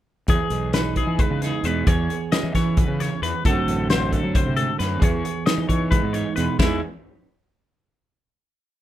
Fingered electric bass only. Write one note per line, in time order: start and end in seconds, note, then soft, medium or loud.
0.29 0.39 E2 loud
0.50 1.01 B1 medium
1.07 1.18 E3 medium
1.30 1.51 C#3 medium
1.63 1.84 E2 medium
1.87 2.07 E2 loud
2.43 2.53 E3 medium
2.55 2.85 E3 medium
2.88 3.08 C#3 medium
3.22 3.32 E2 medium
3.45 3.55 F#2 loud
3.66 4.16 A1 medium
4.24 4.33 F#3 medium
4.46 4.66 C3 medium
4.80 5.00 F#2 medium
5.02 5.22 E2 loud
5.58 5.68 E3 medium
5.69 5.99 E3 medium
6.03 6.23 G#2 medium
6.38 6.47 E2 medium
6.59 6.80 E2 loud